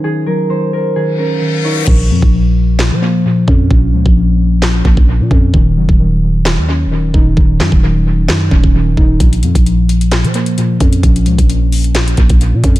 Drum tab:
CC |----------------|x---------------|----------------|----------------|
HH |----------------|----------------|----------------|----------------|
CP |----------------|--------x-------|--------x-------|--------x-------|
SD |----------------|--------o-------|--------o-------|--------o-------|
BD |----------------|o--o----------o-|o--o------oo--o-|o--o----------o-|

CC |----------------|----------------|----------------|
HH |----------------|xxxxx-xxxxxxx-xx|xxxxx-oxxxxxx-xx|
CP |--x-----x-------|--------x-------|--------x-------|
SD |--o-----o-------|--------o-------|--------o-------|
BD |o--o------oo--o-|o--o----------o-|o--o------oo--o-|